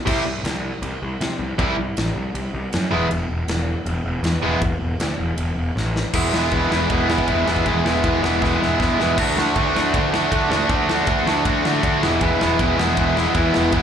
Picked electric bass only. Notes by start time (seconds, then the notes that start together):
0.07 C2
0.25 C2
0.44 C2
0.82 C2
1.02 C2
1.21 C3
1.39 C2
1.59 C2
1.78 C2
1.98 A1
2.15 C2
2.34 C2
2.54 C2
2.74 F#2
2.93 E1
3.11 E1
3.30 E1
3.48 E1
3.86 E1
4.05 E1
4.23 E2
4.42 E1
4.62 E1
4.80 E1
5.00 D2
5.18 E1
5.37 E1
5.56 E1
5.76 A1
6.14 E1
6.33 E1
6.52 E1
6.70 E1
6.90 E1
7.28 E1
7.47 E1
7.66 E1
7.85 E1
8.04 E1
8.23 E1
8.42 E1
8.62 E1
8.80 E1
9.00 E1
9.18 D2
9.37 D2
9.56 D2
9.75 D2
9.94 D2
10.32 D3
10.51 D2
10.69 D2
11.07 D2
11.27 D2
11.45 D2
11.66 D3
11.83 D3
12.03 E1
12.21 E1
12.41 E1
12.60 E1
12.78 E1
12.97 E1
13.35 E2
13.55 E1
13.73 E1